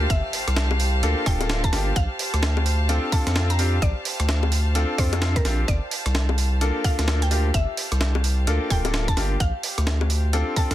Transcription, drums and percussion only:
0.10 kick loud
0.10 closed hi-hat medium
0.33 open hi-hat loud
0.48 cross-stick medium
0.48 closed hi-hat medium
0.56 snare loud
0.71 high bongo medium
0.80 open hi-hat loud
1.03 closed hi-hat medium
1.26 kick loud
1.26 cross-stick medium
1.26 open hi-hat loud
1.41 closed hi-hat medium
1.41 high bongo medium
1.49 snare loud
1.64 kick loud
1.64 closed hi-hat soft
1.73 snare medium
1.73 open hi-hat loud
1.96 kick loud
1.96 closed hi-hat medium
2.19 open hi-hat loud
2.34 cross-stick medium
2.34 closed hi-hat medium
2.43 snare loud
2.57 high bongo medium
2.66 open hi-hat loud
2.89 closed hi-hat medium
3.12 kick loud
3.12 open hi-hat loud
3.27 snare medium
3.27 closed hi-hat medium
3.36 snare loud
3.50 closed hi-hat soft
3.59 open hi-hat loud
3.82 kick loud
3.82 closed hi-hat medium
4.05 open hi-hat loud
4.20 cross-stick medium
4.20 closed hi-hat medium
4.29 snare loud
4.43 high bongo medium
4.52 open hi-hat loud
4.75 closed hi-hat medium
4.98 kick loud
4.98 cross-stick medium
4.98 open hi-hat loud
5.13 closed hi-hat medium
5.13 high bongo medium
5.22 snare loud
5.36 kick loud
5.36 closed hi-hat medium
5.45 snare medium
5.45 open hi-hat loud
5.68 kick loud
5.68 closed hi-hat medium
5.91 open hi-hat loud
6.06 cross-stick medium
6.06 closed hi-hat medium
6.15 snare loud
6.29 high bongo medium
6.38 open hi-hat loud
6.61 closed hi-hat medium
6.84 kick loud
6.84 open hi-hat loud
6.99 snare medium
6.99 closed hi-hat medium
7.08 snare loud
7.22 closed hi-hat medium
7.31 open hi-hat loud
7.54 kick loud
7.54 closed hi-hat medium
7.77 open hi-hat loud
7.92 cross-stick medium
7.92 closed hi-hat medium
8.01 snare loud
8.15 high bongo medium
8.24 open hi-hat loud
8.47 closed hi-hat medium
8.70 kick loud
8.70 cross-stick medium
8.70 open hi-hat loud
8.85 closed hi-hat medium
8.85 high bongo medium
8.94 snare loud
9.08 kick loud
9.08 closed hi-hat medium
9.17 snare medium
9.17 open hi-hat loud
9.40 kick loud
9.40 closed hi-hat medium
9.63 open hi-hat loud
9.78 cross-stick medium
9.78 closed hi-hat medium
9.87 snare loud
10.01 high bongo medium
10.10 open hi-hat loud
10.33 closed hi-hat medium
10.56 kick loud
10.56 open hi-hat loud
10.71 snare medium
10.71 closed hi-hat medium

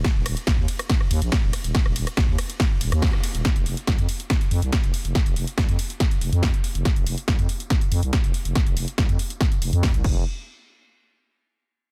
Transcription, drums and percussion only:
0.04 kick loud
0.04 snare loud
0.04 closed hi-hat medium
0.04 ride medium
0.26 cross-stick loud
0.26 open hi-hat loud
0.26 ride medium
0.37 closed hi-hat medium
0.47 kick loud
0.47 cross-stick medium
0.47 snare loud
0.47 closed hi-hat medium
0.47 ride medium
0.68 open hi-hat loud
0.68 ride medium
0.79 cross-stick loud
0.79 closed hi-hat medium
0.90 kick loud
0.90 snare loud
0.90 closed hi-hat medium
0.90 ride medium
1.01 cross-stick medium
1.11 open hi-hat loud
1.11 ride medium
1.22 closed hi-hat medium
1.32 kick loud
1.32 cross-stick medium
1.32 snare loud
1.32 closed hi-hat medium
1.32 ride medium
1.53 cross-stick medium
1.53 open hi-hat loud
1.53 ride medium
1.64 closed hi-hat medium
1.75 kick loud
1.75 snare loud
1.75 closed hi-hat medium
1.75 ride medium
1.86 cross-stick medium
1.96 open hi-hat loud
1.96 ride medium
2.07 cross-stick medium
2.07 closed hi-hat medium
2.17 kick loud
2.17 snare loud
2.17 closed hi-hat medium
2.17 ride medium
2.38 cross-stick medium
2.38 open hi-hat loud
2.38 ride medium
2.50 closed hi-hat medium
2.60 kick loud
2.60 cross-stick medium
2.60 snare loud
2.60 closed hi-hat medium
2.60 ride medium
2.81 open hi-hat loud
2.81 ride medium
2.92 cross-stick medium
2.92 closed hi-hat medium
3.02 kick loud
3.02 snare loud
3.02 open hi-hat medium
3.02 ride medium
3.13 cross-stick medium
3.24 open hi-hat loud
3.24 ride medium
3.35 closed hi-hat medium
3.45 kick loud
3.45 snare loud
3.45 closed hi-hat medium
3.56 closed hi-hat medium
3.66 open hi-hat loud
3.77 closed hi-hat medium
3.87 kick loud
3.87 snare loud
3.87 closed hi-hat loud
3.99 closed hi-hat medium
4.09 open hi-hat loud
4.20 closed hi-hat medium
4.30 kick loud
4.30 snare loud
4.30 closed hi-hat loud
4.41 closed hi-hat medium
4.51 open hi-hat loud
4.62 closed hi-hat medium
4.72 kick loud
4.72 snare loud
4.72 closed hi-hat medium
4.84 closed hi-hat medium
4.94 open hi-hat loud
5.05 closed hi-hat medium
5.15 kick loud
5.15 snare loud
5.15 closed hi-hat medium
5.26 closed hi-hat medium
5.36 open hi-hat loud
5.47 closed hi-hat medium
5.58 kick loud
5.58 snare loud
5.58 closed hi-hat loud
5.69 closed hi-hat medium
5.79 open hi-hat loud
5.90 closed hi-hat medium
6.00 kick loud
6.00 snare loud
6.00 closed hi-hat loud
6.11 closed hi-hat medium
6.21 open hi-hat loud
6.33 closed hi-hat medium
6.43 kick loud
6.43 snare loud
6.43 open hi-hat medium
6.54 closed hi-hat medium
6.64 open hi-hat loud
6.75 closed hi-hat medium
6.85 kick loud
6.85 snare loud
6.85 closed hi-hat medium
6.96 closed hi-hat medium
7.07 open hi-hat loud
7.18 closed hi-hat medium
7.28 kick loud
7.28 snare loud
7.28 closed hi-hat medium
7.39 closed hi-hat medium
7.49 open hi-hat loud
7.60 closed hi-hat medium
7.70 kick loud
7.70 snare loud
7.70 closed hi-hat medium
7.81 closed hi-hat medium
7.92 open hi-hat loud
8.03 closed hi-hat medium
8.13 kick loud
8.13 snare loud
8.13 closed hi-hat loud
8.24 closed hi-hat medium
8.34 open hi-hat loud
8.45 closed hi-hat medium
8.55 kick loud
8.55 snare loud
8.55 closed hi-hat medium
8.67 closed hi-hat medium
8.77 open hi-hat loud
8.88 closed hi-hat medium
8.98 kick loud
8.98 snare loud
8.98 closed hi-hat medium
9.09 closed hi-hat medium
9.19 open hi-hat loud
9.30 closed hi-hat medium
9.41 kick loud
9.41 snare loud
9.41 closed hi-hat medium
9.52 closed hi-hat medium
9.62 open hi-hat loud
9.73 closed hi-hat medium
9.83 kick loud
9.83 snare loud
9.83 open hi-hat medium
9.94 closed hi-hat medium
10.04 kick loud
10.04 crash medium

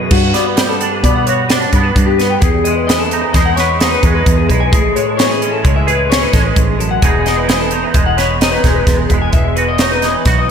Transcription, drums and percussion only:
0.11 kick loud
0.11 crash loud
0.34 snare soft
0.34 closed hi-hat medium
0.57 snare loud
0.57 closed hi-hat loud
0.81 closed hi-hat medium
1.04 kick medium
1.04 closed hi-hat medium
1.27 closed hi-hat medium
1.50 snare loud
1.50 closed hi-hat medium
1.73 kick medium
1.73 closed hi-hat medium
1.96 kick loud
1.96 closed hi-hat medium
2.19 snare soft
2.19 closed hi-hat medium
2.42 kick loud
2.42 closed hi-hat medium
2.65 closed hi-hat medium
2.89 snare loud
2.89 closed hi-hat medium
3.11 closed hi-hat medium
3.34 kick loud
3.34 snare soft
3.34 closed hi-hat medium
3.57 snare soft
3.57 closed hi-hat medium
3.80 snare medium
3.80 closed hi-hat medium
4.03 kick medium
4.03 closed hi-hat medium
4.26 kick loud
4.26 closed hi-hat loud
4.50 kick medium
4.50 closed hi-hat medium
4.73 kick loud
4.73 closed hi-hat medium
4.96 closed hi-hat medium
5.19 snare loud
5.19 closed hi-hat loud
5.42 closed hi-hat medium
5.65 kick loud
5.65 closed hi-hat medium
5.88 closed hi-hat medium
6.12 snare loud
6.12 closed hi-hat medium
6.33 kick medium
6.33 snare soft
6.33 closed hi-hat medium
6.56 kick loud
6.56 closed hi-hat medium
6.80 closed hi-hat medium
7.02 kick loud
7.02 closed hi-hat medium
7.26 snare soft
7.26 closed hi-hat medium
7.49 snare loud
7.49 closed hi-hat loud
7.71 closed hi-hat medium
7.94 kick loud
7.94 closed hi-hat medium
8.18 snare soft
8.18 closed hi-hat medium
8.41 snare loud
8.41 closed hi-hat medium
8.64 kick medium
8.64 snare soft
8.64 closed hi-hat medium
8.87 kick loud
8.87 snare soft
8.87 closed hi-hat loud
9.10 kick medium
9.10 closed hi-hat medium
9.33 kick medium
9.33 closed hi-hat medium
9.57 closed hi-hat medium
9.78 snare loud
9.78 closed hi-hat medium
10.02 snare soft
10.02 closed hi-hat medium
10.25 kick loud
10.25 snare soft
10.25 closed hi-hat medium

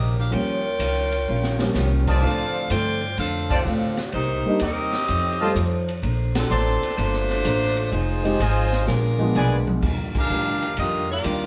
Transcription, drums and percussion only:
0.32 ride medium
0.80 hi-hat pedal medium
0.80 ride medium
1.12 ride soft
1.43 snare soft
1.59 snare medium
1.74 snare soft
1.74 hi-hat pedal soft
2.07 kick medium
2.07 crash medium
2.70 hi-hat pedal medium
2.70 ride medium
3.18 ride medium
3.50 kick medium
3.50 ride medium
3.65 hi-hat pedal medium
3.97 snare medium
3.97 ride soft
4.12 ride medium
4.59 hi-hat pedal soft
4.59 ride medium
4.93 snare soft
4.93 ride soft
5.08 ride medium
5.56 hi-hat pedal soft
5.56 ride medium
5.88 ride soft
6.03 ride soft
6.35 snare medium
6.35 ride medium
6.51 hi-hat pedal medium
6.83 ride soft
6.98 ride medium
7.14 snare soft
7.30 snare soft
7.45 hi-hat pedal medium
7.45 ride medium
7.77 ride soft
7.92 ride soft
8.25 ride soft
8.40 hi-hat pedal medium
8.40 ride medium
8.73 snare soft
8.87 snare soft
9.19 high tom medium
9.35 hi-hat pedal medium
9.35 high tom medium
9.67 high tom medium
9.82 kick medium
9.82 crash medium
10.15 kick medium
10.15 crash medium
10.29 hi-hat pedal medium
10.62 ride soft
10.77 ride medium
11.24 hi-hat pedal medium
11.24 ride medium

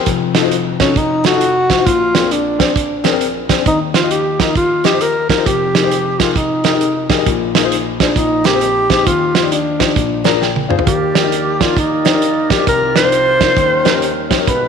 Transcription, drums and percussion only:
0.06 kick loud
0.06 closed hi-hat medium
0.35 snare loud
0.35 closed hi-hat medium
0.51 closed hi-hat medium
0.80 kick medium
0.80 snare loud
0.80 closed hi-hat medium
0.96 kick loud
0.96 closed hi-hat medium
1.24 snare loud
1.24 closed hi-hat medium
1.41 closed hi-hat medium
1.70 kick medium
1.70 snare loud
1.70 closed hi-hat medium
1.87 kick loud
1.87 closed hi-hat loud
2.15 snare loud
2.15 closed hi-hat medium
2.31 closed hi-hat medium
2.60 kick medium
2.60 snare loud
2.60 closed hi-hat medium
2.76 kick loud
2.76 closed hi-hat medium
3.04 snare loud
3.04 closed hi-hat medium
3.21 closed hi-hat medium
3.49 kick medium
3.49 snare loud
3.49 closed hi-hat medium
3.66 kick loud
3.66 closed hi-hat medium
3.94 snare loud
3.94 closed hi-hat medium
4.11 closed hi-hat medium
4.40 kick medium
4.40 snare loud
4.40 closed hi-hat medium
4.55 kick loud
4.55 closed hi-hat medium
4.84 snare loud
4.84 closed hi-hat medium
5.01 closed hi-hat medium
5.29 kick medium
5.29 snare loud
5.29 closed hi-hat medium
5.46 kick loud
5.46 closed hi-hat medium
5.75 snare loud
5.75 closed hi-hat medium
5.91 closed hi-hat medium
6.20 kick medium
6.20 snare loud
6.20 closed hi-hat medium
6.36 kick loud
6.36 closed hi-hat medium
6.64 snare loud
6.64 closed hi-hat medium
6.81 closed hi-hat medium
7.10 kick medium
7.10 snare loud
7.10 closed hi-hat medium
7.26 kick loud
7.26 closed hi-hat loud
7.55 snare loud
7.55 closed hi-hat medium
7.72 closed hi-hat medium
8.00 kick medium
8.00 snare loud
8.00 closed hi-hat medium
8.16 kick loud
8.16 closed hi-hat medium
8.44 snare loud
8.44 closed hi-hat medium
8.61 closed hi-hat medium
8.90 kick medium
8.90 snare loud
8.90 closed hi-hat medium
9.07 kick loud
9.07 closed hi-hat medium
9.35 snare loud
9.35 closed hi-hat medium
9.52 closed hi-hat medium
9.80 kick medium
9.80 snare loud
9.80 closed hi-hat medium
9.96 kick loud
9.96 closed hi-hat medium
10.24 snare medium
10.24 closed hi-hat medium
10.42 snare medium
10.56 high tom medium
10.70 mid tom medium
10.79 floor tom medium
10.87 kick loud
10.87 closed hi-hat loud
11.15 snare loud
11.15 closed hi-hat medium
11.32 closed hi-hat medium
11.61 kick medium
11.61 snare loud
11.61 closed hi-hat medium
11.77 kick loud
11.77 closed hi-hat medium
12.05 snare loud
12.05 closed hi-hat medium
12.22 closed hi-hat medium
12.50 kick medium
12.50 snare loud
12.50 closed hi-hat medium
12.67 kick loud
12.67 closed hi-hat medium
12.96 snare loud
12.96 closed hi-hat medium
13.12 closed hi-hat medium
13.41 kick medium
13.41 snare loud
13.41 closed hi-hat medium
13.57 kick loud
13.57 closed hi-hat medium
13.85 snare loud
13.85 closed hi-hat medium
14.02 closed hi-hat medium
14.31 kick medium
14.31 snare loud
14.31 closed hi-hat medium
14.47 kick loud
14.47 closed hi-hat medium

